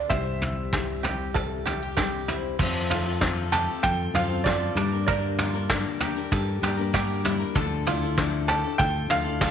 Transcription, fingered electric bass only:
0.10 2.55 C2 medium
2.59 3.67 F2 medium
3.84 4.11 F2 medium
4.14 4.68 F#2 medium
4.75 5.84 G2 medium
6.32 6.58 G2 medium
6.62 7.43 G2 medium
7.56 8.63 D2 medium
8.79 9.06 D2 loud
9.10 9.51 D2 medium

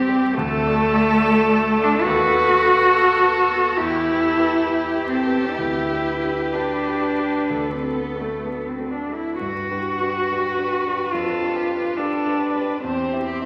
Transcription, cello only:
0.00 0.35 C4 loud
0.33 1.85 A3 loud
1.83 2.04 D4 loud
2.02 3.78 F#4 loud
3.76 5.07 E4 loud
5.08 5.55 C4 medium
5.54 6.55 E4 medium
6.53 7.73 D4 medium
7.72 7.97 C4 medium
7.96 8.22 B3 medium
8.20 8.46 A3 medium
8.44 8.70 B3 medium
8.69 8.93 C4 medium
8.91 9.16 D4 medium
9.14 9.37 E4 medium
9.38 11.13 F#4 medium
11.11 11.98 F4 medium
11.97 12.81 D4 medium
12.82 13.46 C4 medium

